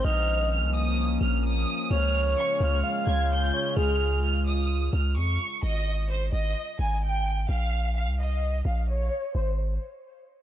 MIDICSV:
0, 0, Header, 1, 5, 480
1, 0, Start_track
1, 0, Key_signature, -4, "major"
1, 0, Tempo, 465116
1, 47, Time_signature, 4, 2, 24, 8
1, 10757, End_track
2, 0, Start_track
2, 0, Title_t, "Violin section"
2, 0, Program_c, 0, 48
2, 50, Note_on_c, 0, 89, 106
2, 500, Note_off_c, 0, 89, 0
2, 529, Note_on_c, 0, 89, 95
2, 723, Note_off_c, 0, 89, 0
2, 770, Note_on_c, 0, 87, 94
2, 1220, Note_off_c, 0, 87, 0
2, 1245, Note_on_c, 0, 89, 77
2, 1440, Note_off_c, 0, 89, 0
2, 1492, Note_on_c, 0, 87, 96
2, 1941, Note_off_c, 0, 87, 0
2, 1971, Note_on_c, 0, 89, 123
2, 2421, Note_off_c, 0, 89, 0
2, 2448, Note_on_c, 0, 85, 93
2, 2642, Note_off_c, 0, 85, 0
2, 2686, Note_on_c, 0, 89, 98
2, 3138, Note_off_c, 0, 89, 0
2, 3168, Note_on_c, 0, 92, 80
2, 3362, Note_off_c, 0, 92, 0
2, 3413, Note_on_c, 0, 91, 106
2, 3862, Note_off_c, 0, 91, 0
2, 3883, Note_on_c, 0, 89, 111
2, 4337, Note_off_c, 0, 89, 0
2, 4365, Note_on_c, 0, 89, 100
2, 4560, Note_off_c, 0, 89, 0
2, 4604, Note_on_c, 0, 87, 83
2, 5057, Note_off_c, 0, 87, 0
2, 5087, Note_on_c, 0, 89, 77
2, 5282, Note_off_c, 0, 89, 0
2, 5327, Note_on_c, 0, 85, 83
2, 5778, Note_off_c, 0, 85, 0
2, 5797, Note_on_c, 0, 75, 104
2, 6253, Note_off_c, 0, 75, 0
2, 6286, Note_on_c, 0, 72, 91
2, 6481, Note_off_c, 0, 72, 0
2, 6525, Note_on_c, 0, 75, 91
2, 6978, Note_off_c, 0, 75, 0
2, 7008, Note_on_c, 0, 80, 75
2, 7202, Note_off_c, 0, 80, 0
2, 7249, Note_on_c, 0, 79, 93
2, 7700, Note_off_c, 0, 79, 0
2, 7725, Note_on_c, 0, 77, 102
2, 8177, Note_off_c, 0, 77, 0
2, 8203, Note_on_c, 0, 77, 91
2, 8399, Note_off_c, 0, 77, 0
2, 8452, Note_on_c, 0, 75, 83
2, 8901, Note_off_c, 0, 75, 0
2, 8927, Note_on_c, 0, 77, 72
2, 9121, Note_off_c, 0, 77, 0
2, 9167, Note_on_c, 0, 73, 94
2, 9619, Note_off_c, 0, 73, 0
2, 9648, Note_on_c, 0, 72, 88
2, 9871, Note_off_c, 0, 72, 0
2, 10757, End_track
3, 0, Start_track
3, 0, Title_t, "Soft synth lead"
3, 0, Program_c, 1, 80
3, 47, Note_on_c, 1, 75, 112
3, 499, Note_off_c, 1, 75, 0
3, 1968, Note_on_c, 1, 73, 127
3, 2887, Note_off_c, 1, 73, 0
3, 2926, Note_on_c, 1, 77, 92
3, 3606, Note_off_c, 1, 77, 0
3, 3649, Note_on_c, 1, 73, 88
3, 3876, Note_off_c, 1, 73, 0
3, 3887, Note_on_c, 1, 68, 115
3, 4339, Note_off_c, 1, 68, 0
3, 10757, End_track
4, 0, Start_track
4, 0, Title_t, "Ambient pad"
4, 0, Program_c, 2, 92
4, 48, Note_on_c, 2, 53, 86
4, 48, Note_on_c, 2, 58, 80
4, 48, Note_on_c, 2, 61, 95
4, 1949, Note_off_c, 2, 53, 0
4, 1949, Note_off_c, 2, 58, 0
4, 1949, Note_off_c, 2, 61, 0
4, 1968, Note_on_c, 2, 49, 91
4, 1968, Note_on_c, 2, 56, 81
4, 1968, Note_on_c, 2, 65, 96
4, 5769, Note_off_c, 2, 56, 0
4, 5769, Note_off_c, 2, 65, 0
4, 5770, Note_off_c, 2, 49, 0
4, 10757, End_track
5, 0, Start_track
5, 0, Title_t, "808-style bass"
5, 0, Program_c, 3, 38
5, 48, Note_on_c, 3, 34, 107
5, 648, Note_on_c, 3, 36, 103
5, 663, Note_off_c, 3, 34, 0
5, 1218, Note_off_c, 3, 36, 0
5, 1248, Note_on_c, 3, 34, 104
5, 1709, Note_off_c, 3, 34, 0
5, 1968, Note_on_c, 3, 37, 109
5, 2429, Note_off_c, 3, 37, 0
5, 2688, Note_on_c, 3, 37, 107
5, 2918, Note_off_c, 3, 37, 0
5, 3168, Note_on_c, 3, 37, 107
5, 3629, Note_off_c, 3, 37, 0
5, 3888, Note_on_c, 3, 37, 111
5, 5046, Note_off_c, 3, 37, 0
5, 5088, Note_on_c, 3, 37, 109
5, 5328, Note_on_c, 3, 41, 100
5, 5344, Note_off_c, 3, 37, 0
5, 5556, Note_off_c, 3, 41, 0
5, 5808, Note_on_c, 3, 32, 109
5, 6499, Note_off_c, 3, 32, 0
5, 6528, Note_on_c, 3, 32, 104
5, 6758, Note_off_c, 3, 32, 0
5, 7008, Note_on_c, 3, 32, 105
5, 7699, Note_off_c, 3, 32, 0
5, 7728, Note_on_c, 3, 34, 105
5, 8328, Note_on_c, 3, 36, 101
5, 8344, Note_off_c, 3, 34, 0
5, 8898, Note_off_c, 3, 36, 0
5, 8928, Note_on_c, 3, 34, 106
5, 9389, Note_off_c, 3, 34, 0
5, 9648, Note_on_c, 3, 32, 104
5, 10094, Note_off_c, 3, 32, 0
5, 10757, End_track
0, 0, End_of_file